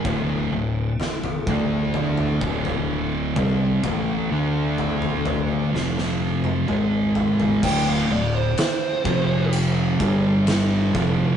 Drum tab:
CC |----------------|----------------|x---------------|
RD |----------------|----------------|----b---b---b---|
SD |----o-----------|--------oo------|----o-------o---|
T1 |----------------|-----------o----|----------------|
T2 |--------o-----o-|------o-----o---|----------------|
FT |o---ooo-oo-o--o-|o---ooo-------oo|----------------|
BD |o-----o---o---o-|o---------------|o-----o---o---o-|